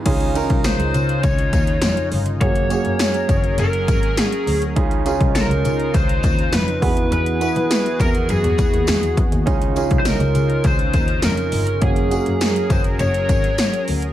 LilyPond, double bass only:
\new Staff \with { instrumentName = "Double bass" } { \clef bass \time 4/4 \key des \major \tempo 4 = 102 des,16 r8 c,16 r16 des,16 des8 des,8 ees,8 f,8 g,,8 | ges,,8 r16 ges,8 r16 ges,,8 ges,,8 aes,,8 r8 d,8 | des,16 r8 c,16 r16 des,16 des8 des,8 ees,8 f,8 e,8 | e,8 r16 e8 r16 e,8 fis,16 e,16 r16 ees,16 e,16 r16 e,16 ees,16 |
des,16 r8 c,16 r16 des,16 des8 des,8 ees,8 f,8 g,,8 | ges,,8 r16 ges,8 r16 ges,,8 ges,,8 aes,,8 r8 d,8 | }